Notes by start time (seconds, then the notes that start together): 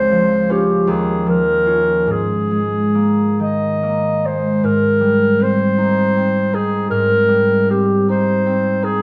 Already playing: C#2 F3 C4 C5
0.11 F3
0.49 C#4 F4 G4
0.87 D#2 G#4
1.26 F3 A#4
1.66 C#4 F4
2.07 G#2
2.11 G#4
2.51 G#3
2.95 A#3
3.40 D#3 D#5
3.83 A#3
4.25 G#3 C5
4.64 G#2 A#4
5.00 G3
5.39 C4 C5
5.78 D#4
6.17 C4
6.53 D#4 G#4
6.90 G#2 A#4
7.28 G3
7.70 C4 G4
8.09 D#4 C5
8.46 C4
8.82 D#4 G#4